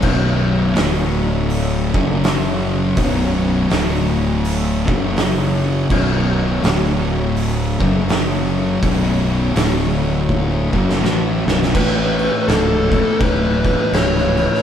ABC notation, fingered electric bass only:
X:1
M:4/4
L:1/8
Q:"Swing" 1/4=82
K:Bm
V:1 name="Fingered electric bass" clef=bass
B,,,,2 D,,,3 F,,,3 | B,,,,2 D,,,3 F,,,3 | B,,,,2 D,,,3 F,,,3 | B,,,,2 D,,,3 F,,, A,,, B,,,, |
A,,,2 C,,,2 D,,,2 C,,,2 |]